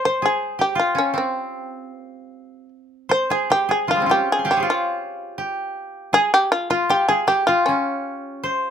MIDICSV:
0, 0, Header, 1, 3, 480
1, 0, Start_track
1, 0, Tempo, 749064
1, 20, Time_signature, 2, 2, 24, 8
1, 980, Tempo, 783290
1, 2900, Tempo, 747198
1, 4340, Tempo, 769231
1, 5463, End_track
2, 0, Start_track
2, 0, Title_t, "Koto"
2, 0, Program_c, 0, 107
2, 0, Note_on_c, 0, 68, 61
2, 34, Note_on_c, 0, 72, 56
2, 139, Note_off_c, 0, 68, 0
2, 142, Note_on_c, 0, 68, 60
2, 377, Note_on_c, 0, 67, 50
2, 415, Note_off_c, 0, 68, 0
2, 483, Note_on_c, 0, 65, 64
2, 607, Note_on_c, 0, 61, 57
2, 646, Note_off_c, 0, 72, 0
2, 728, Note_on_c, 0, 60, 47
2, 766, Note_off_c, 0, 61, 0
2, 1653, Note_off_c, 0, 67, 0
2, 1844, Note_off_c, 0, 65, 0
2, 1938, Note_on_c, 0, 72, 66
2, 2066, Note_on_c, 0, 68, 59
2, 2188, Note_on_c, 0, 67, 62
2, 2225, Note_off_c, 0, 68, 0
2, 2302, Note_on_c, 0, 68, 54
2, 2332, Note_off_c, 0, 60, 0
2, 2338, Note_off_c, 0, 67, 0
2, 2417, Note_on_c, 0, 53, 25
2, 2421, Note_on_c, 0, 65, 60
2, 2453, Note_on_c, 0, 55, 29
2, 2468, Note_on_c, 0, 56, 34
2, 2489, Note_off_c, 0, 68, 0
2, 2496, Note_on_c, 0, 60, 37
2, 2505, Note_on_c, 0, 61, 42
2, 2530, Note_off_c, 0, 65, 0
2, 2532, Note_on_c, 0, 65, 43
2, 2542, Note_off_c, 0, 55, 0
2, 2542, Note_off_c, 0, 72, 0
2, 2552, Note_on_c, 0, 67, 61
2, 2588, Note_off_c, 0, 53, 0
2, 2588, Note_off_c, 0, 56, 0
2, 2732, Note_on_c, 0, 84, 24
2, 2766, Note_off_c, 0, 67, 0
2, 2766, Note_on_c, 0, 80, 29
2, 2769, Note_off_c, 0, 61, 0
2, 2769, Note_on_c, 0, 67, 65
2, 2773, Note_on_c, 0, 77, 36
2, 2773, Note_on_c, 0, 79, 33
2, 2809, Note_on_c, 0, 72, 41
2, 2811, Note_on_c, 0, 73, 41
2, 2843, Note_on_c, 0, 68, 42
2, 2848, Note_off_c, 0, 60, 0
2, 2848, Note_off_c, 0, 84, 0
2, 2859, Note_off_c, 0, 67, 0
2, 2862, Note_on_c, 0, 67, 45
2, 2875, Note_off_c, 0, 65, 0
2, 2877, Note_on_c, 0, 65, 58
2, 2880, Note_off_c, 0, 79, 0
2, 2898, Note_off_c, 0, 80, 0
2, 3358, Note_off_c, 0, 67, 0
2, 3361, Note_on_c, 0, 67, 57
2, 3400, Note_off_c, 0, 68, 0
2, 3693, Note_off_c, 0, 77, 0
2, 3842, Note_on_c, 0, 68, 66
2, 3871, Note_off_c, 0, 73, 0
2, 3881, Note_off_c, 0, 67, 0
2, 3907, Note_off_c, 0, 72, 0
2, 4207, Note_off_c, 0, 65, 0
2, 4209, Note_on_c, 0, 65, 63
2, 4334, Note_on_c, 0, 67, 68
2, 4371, Note_off_c, 0, 68, 0
2, 4454, Note_on_c, 0, 68, 70
2, 4492, Note_off_c, 0, 67, 0
2, 4571, Note_on_c, 0, 67, 62
2, 4608, Note_off_c, 0, 68, 0
2, 4699, Note_off_c, 0, 65, 0
2, 4701, Note_on_c, 0, 65, 64
2, 4827, Note_on_c, 0, 61, 59
2, 5295, Note_on_c, 0, 72, 66
2, 5333, Note_off_c, 0, 61, 0
2, 5463, Note_off_c, 0, 65, 0
2, 5463, Note_off_c, 0, 67, 0
2, 5463, Note_off_c, 0, 72, 0
2, 5463, End_track
3, 0, Start_track
3, 0, Title_t, "Shamisen"
3, 0, Program_c, 1, 106
3, 34, Note_on_c, 1, 72, 78
3, 138, Note_off_c, 1, 72, 0
3, 164, Note_on_c, 1, 68, 70
3, 373, Note_off_c, 1, 68, 0
3, 394, Note_on_c, 1, 67, 66
3, 496, Note_off_c, 1, 67, 0
3, 510, Note_on_c, 1, 65, 61
3, 614, Note_off_c, 1, 65, 0
3, 631, Note_on_c, 1, 61, 64
3, 735, Note_off_c, 1, 61, 0
3, 754, Note_on_c, 1, 60, 55
3, 1383, Note_off_c, 1, 60, 0
3, 1383, Note_on_c, 1, 56, 55
3, 1688, Note_off_c, 1, 56, 0
3, 1951, Note_on_c, 1, 72, 83
3, 2063, Note_off_c, 1, 72, 0
3, 2074, Note_on_c, 1, 68, 69
3, 2184, Note_off_c, 1, 68, 0
3, 2197, Note_on_c, 1, 67, 81
3, 2306, Note_off_c, 1, 67, 0
3, 2317, Note_on_c, 1, 68, 73
3, 2425, Note_off_c, 1, 68, 0
3, 2438, Note_on_c, 1, 65, 74
3, 2544, Note_off_c, 1, 65, 0
3, 2562, Note_on_c, 1, 67, 74
3, 2665, Note_off_c, 1, 67, 0
3, 2692, Note_on_c, 1, 68, 72
3, 2789, Note_off_c, 1, 68, 0
3, 2805, Note_on_c, 1, 67, 66
3, 2903, Note_off_c, 1, 67, 0
3, 2924, Note_on_c, 1, 65, 67
3, 3607, Note_off_c, 1, 65, 0
3, 3850, Note_on_c, 1, 68, 107
3, 3965, Note_off_c, 1, 68, 0
3, 3976, Note_on_c, 1, 67, 92
3, 4089, Note_off_c, 1, 67, 0
3, 4092, Note_on_c, 1, 65, 93
3, 4205, Note_off_c, 1, 65, 0
3, 4213, Note_on_c, 1, 65, 85
3, 4327, Note_off_c, 1, 65, 0
3, 4340, Note_on_c, 1, 67, 82
3, 4448, Note_off_c, 1, 67, 0
3, 4453, Note_on_c, 1, 68, 77
3, 4564, Note_off_c, 1, 68, 0
3, 4573, Note_on_c, 1, 67, 84
3, 4683, Note_off_c, 1, 67, 0
3, 4692, Note_on_c, 1, 65, 76
3, 4803, Note_off_c, 1, 65, 0
3, 4810, Note_on_c, 1, 61, 60
3, 5463, Note_off_c, 1, 61, 0
3, 5463, End_track
0, 0, End_of_file